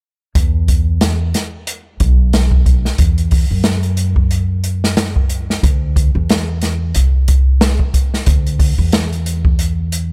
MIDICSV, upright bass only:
0, 0, Header, 1, 2, 480
1, 0, Start_track
1, 0, Tempo, 659341
1, 258, Time_signature, 4, 2, 24, 8
1, 7371, End_track
2, 0, Start_track
2, 0, Title_t, "Upright bass"
2, 0, Program_c, 0, 32
2, 259, Note_on_c, 0, 40, 81
2, 959, Note_off_c, 0, 40, 0
2, 1459, Note_on_c, 0, 35, 81
2, 2050, Note_off_c, 0, 35, 0
2, 2176, Note_on_c, 0, 40, 80
2, 2528, Note_off_c, 0, 40, 0
2, 2553, Note_on_c, 0, 42, 74
2, 4077, Note_off_c, 0, 42, 0
2, 4100, Note_on_c, 0, 38, 84
2, 4450, Note_off_c, 0, 38, 0
2, 4477, Note_on_c, 0, 40, 77
2, 5039, Note_off_c, 0, 40, 0
2, 5063, Note_on_c, 0, 36, 72
2, 5761, Note_off_c, 0, 36, 0
2, 6020, Note_on_c, 0, 38, 87
2, 6370, Note_off_c, 0, 38, 0
2, 6394, Note_on_c, 0, 40, 79
2, 7371, Note_off_c, 0, 40, 0
2, 7371, End_track
0, 0, End_of_file